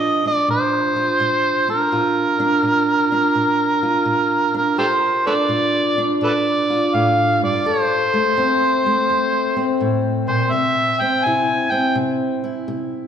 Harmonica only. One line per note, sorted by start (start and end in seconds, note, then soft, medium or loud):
0.00 0.26 D#5 medium
0.27 0.48 D5 medium
0.50 1.65 C5 medium
1.70 4.52 A#4 medium
4.57 4.78 A#4 medium
4.79 4.86 G4 medium
4.79 4.86 A4 medium
4.79 5.23 C5 medium
5.27 5.34 A4 medium
5.27 5.33 B4 medium
5.27 6.18 D5 medium
6.24 6.32 A4 medium
6.24 6.32 B4 medium
6.24 6.96 D5 medium
6.94 7.42 F5 medium
7.44 7.68 D5 medium
7.67 9.81 C5 medium
10.28 10.53 C5 medium
10.51 11.02 E5 medium
11.00 11.26 G5 medium
11.24 11.73 G#5 medium
11.71 11.96 G5 medium